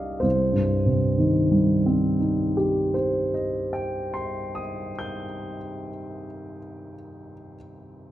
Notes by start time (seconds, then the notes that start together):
Already playing: C2 D4 A#4 D5 F5
0.20 C2 C5
0.53 G2
0.86 C3
1.18 D#3
1.51 G3
1.86 C4
2.20 D#4
2.57 G4
2.94 C5
3.34 D#5
3.73 G5
4.14 C6
4.55 D#6
4.99 G6